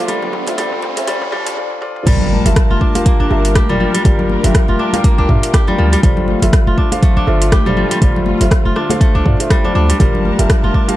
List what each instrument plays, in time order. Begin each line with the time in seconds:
Already playing: string section D3 A3 F4, kora D4 F4, riser
0.08 808-style bass G1, kora G3, string section D4, felt piano F4 A4 C5 D5, closed hi-hat, mid tom, muted conga, high conga
0.22 mid tom, djembe tone, low conga
0.33 mid tom, djembe bass
0.47 808-style bass G1, felt piano F4 A4 C5 E5, closed hi-hat, mid tom, djembe slap, high conga, low conga
0.58 kora G3, felt piano F4 A4 C5 D5, closed hi-hat, mid tom, muted conga, djembe tone
0.72 808-style bass F1, mid tom
0.82 mid tom, djembe slap, djembe tone, high conga
0.97 felt piano F4 A4 C5 E5, closed hi-hat, mid tom, muted conga
1.07 kora G3, felt piano F4 A4 C5 D5, closed hi-hat, mid tom, djembe tone
1.21 808-style bass C2, mid tom
1.32 808-style bass G1, kora G3, felt piano F4 A4 C5 D5, mid tom, muted conga
1.46 808-style bass G1, closed hi-hat, mid tom, djembe tone, djembe bass
1.57 felt piano F4 A4 C5 D5
1.71 high tom
1.82 felt piano F4 A4 C5 D5, mid tom
1.96 mid tom
2.06 808-style bass G1, kora G3, string section G3 D4 A#4 A5, felt piano F4 G4 A#4 D5, kick, closed hi-hat, mid tom, crash, impact, muted conga
2.21 low conga
2.33 high conga
2.45 808-style bass G1, felt piano F4 G4 A#4 E5, closed hi-hat, muted conga, low conga
2.56 kick, cross-stick, closed hi-hat
2.70 808-style bass F1, kora F4, high conga
2.81 kora D4, kick
2.95 felt piano F4 G4 A#4 F5, closed hi-hat, muted conga, high conga
3.06 kora A#3, kick, closed hi-hat, low conga
3.20 808-style bass G1, kora D4
3.30 808-style bass G1, felt piano F4 G4 A#4 E5, muted conga
3.45 closed hi-hat
3.55 kora G4, kick, cross-stick, closed hi-hat, high conga
3.69 kora G3, felt piano F4 G4 A#4 D5, mid tom, muted conga, low conga
3.80 kora F3, high conga
3.94 kora G3, closed hi-hat
4.05 808-style bass G1, kora G3, felt piano F4 G4 A#4 D5, string section G4, kick, closed hi-hat, muted conga
4.19 low conga
4.29 high conga
4.43 808-style bass G1, felt piano F4 G4 A#4 E5, closed hi-hat, muted conga, low conga
4.55 kick, cross-stick, closed hi-hat
4.68 808-style bass F1, kora F4, high conga
4.79 kora D4
4.93 felt piano F4 G4 A#4 F5, closed hi-hat, muted conga, high conga
5.04 kora A#3, kick, closed hi-hat, high conga
5.18 808-style bass C2, kora D4
5.29 808-style bass G2, felt piano F4 G4 A#4 E5, kick, mid tom, muted conga
5.43 closed hi-hat
5.53 kora G4, kick, cross-stick, closed hi-hat
5.67 kora G3, felt piano F4 G4 A#4 D5, muted conga, high conga, low conga
5.78 808-style bass D2, kora F3
5.92 kora G3, closed hi-hat
6.03 808-style bass G1, string section D3 A3 F4, kora G3, felt piano F4 A4 C5 D5, kick, closed hi-hat, mid tom
6.17 low conga
6.28 high conga
6.42 808-style bass G1, felt piano F4 A4 C5 E5, closed hi-hat, muted conga, low conga
6.53 kick, cross-stick, closed hi-hat
6.67 808-style bass F1, kora F4, high conga
6.78 kora D4, kick
6.92 felt piano F4 A4 C5 F5, closed hi-hat, muted conga, high conga
7.02 kora A3, kick, closed hi-hat, low conga
7.17 808-style bass G1, kora D4
7.27 808-style bass G1, felt piano F4 A4 C5 E5, muted conga
7.42 closed hi-hat
7.52 kora G4, kick, cross-stick, closed hi-hat, high conga
7.66 kora G3, felt piano F4 A4 C5 D5, mid tom, muted conga, low conga
7.77 kora F3, high conga
7.91 kora G3, closed hi-hat
8.02 808-style bass G1, kora G3, felt piano F4 A4 C5 D5, kick, closed hi-hat, mid tom, muted conga
8.16 low conga
8.26 high conga
8.40 808-style bass G1, felt piano F4 A4 C5 E5, closed hi-hat, muted conga, low conga
8.51 kick, cross-stick, closed hi-hat
8.65 808-style bass F1, kora F4, high conga
8.76 kora D4, cross-stick
8.90 felt piano F4 A4 C5 F5, closed hi-hat, muted conga, high conga
9.01 kora A3, kick, closed hi-hat
9.15 808-style bass C2, kora D4
9.26 808-style bass G2, felt piano F4 A4 C5 D5, kick, mid tom, muted conga
9.40 felt piano F4 A4 C5 E5, closed hi-hat
9.50 kora G3, kick, cross-stick, closed hi-hat
9.64 kora D4, felt piano F4 A4 C5 D5, muted conga, high conga, low conga
9.75 808-style bass D2, kora D4
9.89 kora G3, closed hi-hat
10.00 808-style bass G1, kora G3, string section G3 D4 A#4 A5, felt piano F4 G4 A#4 D5, kick, closed hi-hat, mid tom, muted conga
10.15 low conga
10.25 high conga
10.39 808-style bass G1, felt piano F4 G4 A#4 E5, closed hi-hat, muted conga, low conga
10.50 kick, cross-stick, closed hi-hat
10.63 808-style bass F1, kora F4, high conga
10.74 kora D4, kick
10.88 felt piano F4 G4 A#4 F5, closed hi-hat, muted conga, high conga